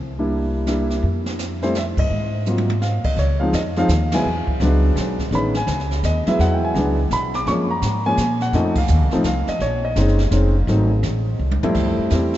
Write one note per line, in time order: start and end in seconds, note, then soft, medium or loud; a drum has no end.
0.00 0.98 C2 medium
0.19 0.65 G3 medium
0.19 0.65 A#3 medium
0.19 0.65 D4 medium
0.19 0.65 E4 medium
0.67 1.03 G3 medium
0.67 1.03 A#3 medium
0.67 1.03 D4 medium
0.67 1.03 E4 medium
0.67 snare medium
0.67 hi-hat pedal soft
0.90 snare soft
1.03 1.93 F2 medium
1.03 brush sweep soft
1.03 kick soft
1.26 snare soft
1.39 snare medium
1.39 hi-hat pedal soft
1.62 1.74 G3 medium
1.62 1.74 A3 medium
1.62 1.74 C4 medium
1.62 1.74 E4 medium
1.62 1.75 C5 medium
1.62 snare soft
1.75 1.82 E5 medium
1.75 snare medium
1.75 hi-hat pedal medium
1.97 2.09 G2 medium
1.97 2.44 D#5 medium
1.97 kick medium
1.97 ride medium
2.10 3.01 G#2 medium
2.10 brush sweep soft
2.46 2.67 F#3 medium
2.46 2.67 A#3 soft
2.46 2.67 C4 soft
2.46 2.68 F4 medium
2.46 hi-hat pedal medium
2.58 high tom medium
2.70 high tom medium
2.82 3.05 F5 medium
2.82 snare soft
3.04 3.18 D#5 medium
3.04 muted upright bass stroke soft
3.04 kick medium
3.04 crash medium
3.17 3.52 C#2 medium
3.17 3.42 C#5 medium
3.17 brush sweep soft
3.17 snare soft
3.40 3.52 F3 medium
3.40 3.53 G#3 medium
3.40 3.53 C4 medium
3.40 3.53 D#4 medium
3.40 3.54 F5 medium
3.53 3.88 F2 medium
3.53 3.60 D#5 medium
3.53 kick soft
3.53 snare medium
3.53 hi-hat pedal medium
3.76 3.88 F3 medium
3.76 3.88 G#3 medium
3.76 3.88 C4 medium
3.76 3.89 D#4 medium
3.76 4.11 F5 loud
3.76 snare soft
3.88 4.23 D#2 medium
3.88 kick soft
3.88 snare medium
3.88 hi-hat pedal medium
4.12 4.25 F#3 medium
4.12 4.25 G#3 medium
4.12 4.25 B3 medium
4.12 4.25 E4 medium
4.12 4.59 G#5 loud
4.12 snare medium
4.12 ride medium
4.24 4.46 E2 medium
4.24 brush sweep medium
4.47 muted upright bass stroke soft
4.47 kick medium
4.60 4.95 C#2 medium
4.60 5.15 F#3 medium
4.60 5.16 G#3 medium
4.60 5.16 B3 medium
4.60 5.16 D4 medium
4.60 snare soft
4.96 5.30 B1 medium
4.96 kick soft
4.96 snare medium
4.96 hi-hat pedal medium
5.19 kick soft
5.19 snare soft
5.31 5.66 A1 medium
5.31 5.53 D#3 medium
5.31 5.53 G#3 medium
5.31 5.53 B3 medium
5.31 5.53 C#4 medium
5.31 brush sweep soft
5.31 kick soft
5.31 snare soft
5.35 5.55 B5 medium
5.54 6.01 G#5 medium
5.54 snare medium
5.67 6.02 C#2 medium
5.67 kick soft
5.67 snare medium
5.67 hi-hat pedal medium
5.80 snare soft
5.91 snare soft
6.03 6.25 D#2 medium
6.03 6.26 D#5 medium
6.03 kick soft
6.03 snare medium
6.03 hi-hat pedal medium
6.26 6.73 F#3 medium
6.26 6.73 G#3 medium
6.26 6.73 B3 medium
6.26 6.74 E4 medium
6.26 6.39 E5 medium
6.26 muted upright bass stroke soft
6.26 snare medium
6.39 6.74 E2 medium
6.39 6.54 F#5 medium
6.39 brush sweep soft
6.39 kick soft
6.39 snare soft
6.54 6.63 G5 medium
6.65 7.09 G#5 medium
6.75 7.10 C#2 medium
6.75 6.96 F#3 medium
6.75 6.96 G#3 medium
6.75 6.97 B3 medium
6.75 6.97 D4 medium
6.75 kick soft
6.75 snare soft
7.10 7.45 B1 medium
7.10 7.36 B5 loud
7.10 kick soft
7.10 snare medium
7.10 hi-hat pedal medium
7.34 7.47 D6 loud
7.34 snare soft
7.46 7.81 F#2 medium
7.46 7.68 F3 medium
7.46 7.68 G#3 medium
7.46 7.68 A#3 medium
7.46 7.68 C#4 medium
7.46 7.53 C#6 loud
7.46 brush sweep soft
7.46 kick soft
7.46 snare soft
7.70 8.07 A#5 medium
7.82 8.17 G#2 medium
7.82 kick soft
7.82 snare medium
7.82 hi-hat pedal medium
8.06 8.17 F3 medium
8.06 8.18 G#3 medium
8.06 8.18 A#3 medium
8.06 8.18 C#4 medium
8.06 8.43 G#5 loud
8.17 8.52 A#2 medium
8.17 kick soft
8.17 snare medium
8.17 hi-hat pedal medium
8.40 8.55 F#5 medium
8.40 snare soft
8.52 8.88 F2 medium
8.52 8.75 F3 medium
8.52 8.75 A3 medium
8.52 8.75 C4 medium
8.52 8.75 D#4 medium
8.52 8.78 D#5 medium
8.52 brush sweep soft
8.52 kick soft
8.52 snare soft
8.76 9.23 F5 medium
8.76 kick medium
8.76 crash medium
8.88 9.02 D#2 medium
8.88 hi-hat pedal medium
9.02 9.12 C2 soft
9.11 9.23 A1 medium
9.11 9.24 F3 medium
9.11 9.24 A3 medium
9.11 9.24 C4 medium
9.11 9.24 D#4 medium
9.11 snare soft
9.24 9.46 C2 medium
9.24 9.49 F5 medium
9.24 kick soft
9.24 snare medium
9.24 hi-hat pedal medium
9.47 9.62 D#5 medium
9.47 muted upright bass stroke soft
9.47 snare soft
9.59 9.95 A#1 medium
9.59 9.83 C#5 medium
9.59 brush sweep soft
9.59 kick soft
9.59 snare soft
9.85 11.36 D#5 medium
9.96 10.30 F#1 medium
9.96 10.18 G#3 medium
9.96 10.18 C4 medium
9.96 10.18 C#4 medium
9.96 10.18 D#4 medium
9.96 kick soft
9.96 snare medium
9.96 hi-hat pedal soft
10.08 snare soft
10.18 snare soft
10.31 10.66 F1 medium
10.31 10.53 G#3 medium
10.31 10.53 C4 medium
10.31 10.53 C#4 medium
10.31 10.53 D#4 medium
10.31 kick soft
10.31 snare medium
10.31 hi-hat pedal medium
10.67 11.02 G#1 medium
10.67 10.89 F#3 medium
10.67 10.89 A3 medium
10.67 10.89 C4 medium
10.67 10.89 D#4 medium
10.67 brush sweep soft
10.67 kick soft
10.67 snare soft
11.03 11.38 A1 medium
11.03 kick soft
11.03 snare medium
11.03 hi-hat pedal soft
11.39 11.61 C2 medium
11.51 high tom medium
11.63 12.09 F2 medium
11.63 12.09 G3 medium
11.63 12.09 A3 medium
11.63 12.09 C4 medium
11.63 12.09 E4 medium
11.63 muted upright bass stroke soft
11.63 floor tom medium
11.74 11.96 F2 medium
11.74 brush sweep soft
11.74 kick medium
11.74 snare soft
11.74 crash medium
11.98 muted upright bass stroke soft
12.10 12.38 E2 medium
12.10 12.32 G3 medium
12.10 12.32 A3 medium
12.10 12.32 C4 medium
12.10 12.32 E4 medium
12.10 kick soft
12.10 snare medium
12.10 hi-hat pedal medium
12.33 snare soft